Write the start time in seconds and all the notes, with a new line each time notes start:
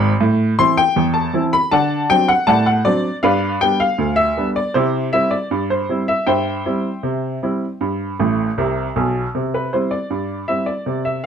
Already playing: G#1 G#2 B5
0.20 A2
0.59 E3 C4 E4 C6
0.77 G5
0.96 E2
1.14 A5
1.33 E3 C4 E4
1.53 B5
1.71 D3 D5 F#5 A5
2.10 F#3 C4 D4 G5
2.28 F#5
2.47 A2 D5 F#5 A5
2.66 F#5
2.85 F#3 C4 D4 D5
3.23 G2 B4 D5 F5
3.61 G3 B3 D4 G5
3.80 F5
3.98 D2
4.16 E5
4.37 G3 B3 D4
4.56 D5
4.74 C3 E4 G4 C5
5.13 G3 C4 E4 E5
5.31 D5
5.51 G2
5.70 C5
5.89 G3 C4 E4
6.08 E5
6.27 G2 C5 E5 G5
6.66 G3 C4 E4
7.03 C3
7.43 G3 C4 E4
7.81 G2
8.19 A1 A2
8.58 C2 C3
8.96 B1 B2
9.35 C3
9.54 B4
9.73 G3 C4 E4 C5
9.91 D5
10.10 G2
10.48 G3 C4 E4 E5
10.66 D5
10.86 C3
11.05 E5